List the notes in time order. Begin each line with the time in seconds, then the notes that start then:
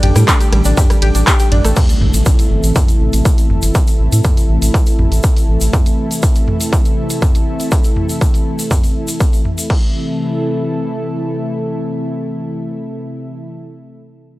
Already playing: D3 G3 A3 G4 A4
0.03 A1 G4 G5, mid tom, open hi-hat, ride
0.16 A2 G3 G4, cross-stick, closed hi-hat, shaker
0.28 D4 D5, kick, clap, closed hi-hat, ride, shaker
0.41 G4 G5, closed hi-hat, shaker
0.52 A1 G3 G4, cross-stick, open hi-hat, ride
0.64 A1 D4 D5, closed hi-hat, shaker
0.77 G4 G5, kick, closed hi-hat, mid tom, ride, shaker
0.90 G3 G4, cross-stick, closed hi-hat, shaker
1.02 A1 G4 G5, open hi-hat, ride
1.15 A1 D4 D5, closed hi-hat, shaker
1.27 G4 G5, kick, cross-stick, clap, closed hi-hat, ride, shaker
1.39 G4 G5, closed hi-hat, shaker
1.52 A1 D4 D5, mid tom, open hi-hat, ride
1.64 A1 A3 A4, cross-stick, closed hi-hat, shaker
1.76 C3 E3 A3 E4 A4, kick, closed hi-hat, crash, impact, shaker
1.89 closed hi-hat, shaker
2.01 A1, mid tom
2.14 A1, closed hi-hat, shaker
2.25 kick, closed hi-hat, shaker
2.39 closed hi-hat, shaker
2.51 G1
2.64 A1, closed hi-hat, shaker
2.76 kick, closed hi-hat, mid tom, shaker
2.88 closed hi-hat, shaker
3.01 A1
3.13 A1, closed hi-hat, shaker
3.25 kick, closed hi-hat, shaker
3.38 closed hi-hat, shaker
3.50 G1, mid tom
3.62 G1, closed hi-hat, shaker
3.75 kick, closed hi-hat, shaker
3.87 closed hi-hat, shaker
4.00 A1
4.12 A2, closed hi-hat, shaker
4.24 kick, closed hi-hat, mid tom, shaker
4.37 closed hi-hat, shaker
4.49 A1
4.62 A1, closed hi-hat, shaker
4.74 kick, closed hi-hat, shaker
4.86 closed hi-hat, shaker
4.99 A1, mid tom
5.12 A1, closed hi-hat, shaker
5.23 kick, closed hi-hat, shaker
5.36 closed hi-hat, shaker
5.49 A1
5.61 A1, closed hi-hat, shaker
5.73 kick, closed hi-hat, mid tom, shaker
5.86 closed hi-hat, shaker
6.11 closed hi-hat, shaker
6.23 kick, closed hi-hat, shaker
6.35 closed hi-hat, shaker
6.48 mid tom
6.61 closed hi-hat, shaker
6.73 kick, closed hi-hat, shaker
6.85 closed hi-hat, shaker
7.10 closed hi-hat, shaker
7.22 kick, closed hi-hat, mid tom, shaker
7.35 closed hi-hat, shaker
7.60 closed hi-hat, shaker
7.72 kick, closed hi-hat, shaker
7.84 closed hi-hat, shaker
7.96 mid tom
8.09 closed hi-hat, shaker
8.21 kick, closed hi-hat, shaker
8.34 closed hi-hat, shaker
8.59 closed hi-hat, shaker
8.71 kick, closed hi-hat, mid tom, shaker
8.84 closed hi-hat, shaker
9.08 closed hi-hat, shaker
9.20 kick, closed hi-hat, shaker
9.33 closed hi-hat, shaker
9.45 mid tom
9.58 closed hi-hat, shaker
9.70 C3 E3 A3 E4 A4, kick, crash